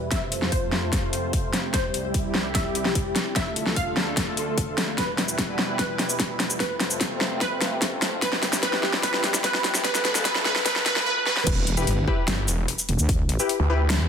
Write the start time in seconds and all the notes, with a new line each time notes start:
0.11 F2 C3 A3 F4 C5 E5, kick, snare, closed hi-hat
0.32 closed hi-hat
0.42 snare
0.52 C5, kick, closed hi-hat
0.72 snare
0.93 kick, snare, closed hi-hat
1.13 closed hi-hat
1.33 kick, closed hi-hat
1.53 snare, closed hi-hat
1.74 C2 G3 E4 G4 C5, kick, snare, closed hi-hat
1.94 closed hi-hat
2.14 kick, closed hi-hat
2.35 snare
2.55 E5, kick, snare, closed hi-hat
2.75 closed hi-hat
2.85 snare
2.95 kick, closed hi-hat
3.16 snare, closed hi-hat
3.36 D2 D3 A3 F4 A4 E5, kick, snare, closed hi-hat
3.56 closed hi-hat
3.67 snare
3.76 F5, kick, closed hi-hat
3.97 snare
4.17 kick, snare, closed hi-hat
4.37 closed hi-hat
4.58 kick, closed hi-hat
4.78 snare, closed hi-hat
4.98 E2 B2 G3 E4 B4, kick, snare, closed hi-hat, riser
5.18 snare, closed hi-hat
5.29 shaker
5.39 kick, snare, closed hi-hat
5.59 snare
5.79 B4, kick, snare, closed hi-hat
5.99 snare, closed hi-hat
6.10 shaker
6.20 kick, snare, closed hi-hat
6.40 snare, closed hi-hat
6.50 shaker
6.60 F2 C3 A3 C4 F4 B4, kick, snare, closed hi-hat
6.80 snare, closed hi-hat
6.91 shaker
7.01 kick, snare, closed hi-hat
7.21 snare
7.41 B4, kick, snare, closed hi-hat
7.61 snare, closed hi-hat
7.82 kick, snare, closed hi-hat
8.02 snare, closed hi-hat
8.22 C2 G3 E4 G4 B4, kick, snare, closed hi-hat
8.33 snare
8.43 snare, closed hi-hat
8.53 snare, shaker
8.63 B4, kick, snare, closed hi-hat
8.73 snare
8.83 snare
8.93 snare
9.03 B4, kick, snare, closed hi-hat
9.14 snare
9.24 snare, closed hi-hat
9.34 snare, shaker
9.44 B4, kick, snare, closed hi-hat
9.54 snare
9.64 snare, closed hi-hat
9.75 snare, shaker
9.84 D2 D3 A3 F4 A4 B4, kick, snare, closed hi-hat
9.95 snare, shaker
10.05 B4, snare, closed hi-hat
10.15 snare, shaker
10.25 B4, kick, snare, closed hi-hat
10.35 snare
10.45 B4, snare
10.56 snare
10.66 B4, kick, snare, closed hi-hat
10.76 snare
10.86 B4, snare, closed hi-hat
10.96 snare
11.06 B4
11.26 B4, snare
11.37 snare
11.47 E1, kick, closed hi-hat, crash, impact
11.67 closed hi-hat
11.77 E4 G4 B4, shaker
11.87 G1, closed hi-hat
12.08 E4 G4 B4, kick
12.28 G1, snare, closed hi-hat
12.48 E1, closed hi-hat, shaker
12.68 closed hi-hat
12.79 shaker
12.89 E1, closed hi-hat
12.99 D2, shaker
13.09 kick, closed hi-hat
13.29 closed hi-hat
13.39 E4 G4 B4, shaker
13.49 closed hi-hat
13.60 D2
13.70 E4 G4 B4
13.90 snare, closed hi-hat
14.00 E2